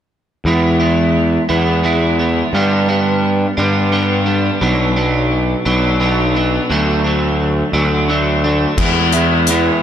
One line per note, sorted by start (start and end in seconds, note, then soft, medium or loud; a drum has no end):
0.45 1.37 E2 medium
0.45 1.16 E3 medium
0.45 0.80 G#3 medium
0.45 0.80 B3 medium
0.45 0.78 E4 medium
0.80 1.49 G#3 soft
0.80 1.49 B3 soft
0.80 1.48 E4 medium
1.49 2.41 E2 medium
1.49 1.82 E3 medium
1.49 1.83 G#3 medium
1.49 1.84 B3 medium
1.49 1.84 E4 medium
1.83 2.52 E3 medium
1.83 2.20 G#3 medium
1.83 2.20 B3 medium
1.83 2.18 E4 medium
2.19 2.53 G#3 soft
2.19 2.55 B3 medium
2.19 2.52 E4 medium
2.53 3.45 G2 medium
2.53 3.23 G2 medium
2.53 3.24 D3 medium
2.53 2.89 G3 medium
2.53 2.89 B3 medium
2.53 2.88 D4 medium
2.88 3.58 G3 medium
2.88 3.57 B3 medium
2.88 3.57 D4 medium
3.57 4.49 G2 medium
3.57 4.29 G2 medium
3.57 3.91 D3 medium
3.57 3.91 G3 medium
3.57 3.92 B3 medium
3.57 3.93 D4 medium
3.92 4.60 D3 medium
3.92 4.26 G3 medium
3.92 4.25 B3 medium
3.92 4.25 D4 medium
4.26 4.60 G3 soft
4.26 4.60 B3 medium
4.26 4.62 D4 medium
4.61 5.53 B1 medium
4.61 5.31 B2 medium
4.61 4.98 F#3 medium
4.61 4.96 B3 medium
4.61 4.96 D4 medium
4.96 5.65 F#3 soft
4.96 5.65 B3 medium
4.96 5.64 D4 medium
5.65 6.58 B1 medium
5.65 5.99 B2 medium
5.65 5.99 F#3 medium
5.65 5.99 B3 medium
5.65 6.00 D4 medium
6.00 6.68 B2 medium
6.00 6.36 F#3 medium
6.00 6.35 B3 medium
6.00 6.34 D4 medium
6.35 6.69 F#3 soft
6.35 6.69 B3 medium
6.35 6.68 D4 medium
6.70 7.62 D2 medium
6.70 7.40 D3 medium
6.70 7.06 F#3 medium
6.70 7.05 A3 medium
6.70 7.03 D4 medium
7.04 7.73 F#3 medium
7.04 7.73 A3 medium
7.04 7.72 D4 medium
7.73 8.65 D2 medium
7.73 8.07 D3 medium
7.73 8.09 F#3 medium
7.73 8.09 A3 medium
7.73 8.10 D4 medium
8.09 8.76 D3 medium
8.09 8.45 F#3 medium
8.09 8.44 A3 medium
8.09 8.43 D4 medium
8.44 8.78 F#3 soft
8.44 8.77 A3 soft
8.44 8.77 D4 medium
8.77 9.69 E2 medium
8.77 9.48 E3 medium
8.77 9.15 G#3 medium
8.77 9.15 B3 medium
8.77 9.12 E4 medium
8.77 kick loud
8.77 crash medium
9.12 9.49 G#3 medium
9.12 9.50 B3 medium
9.12 9.50 E4 medium
9.12 closed hi-hat soft
9.47 9.83 E3 medium
9.47 9.83 G#3 medium
9.47 9.83 B3 medium
9.47 closed hi-hat medium
9.51 9.82 E4 medium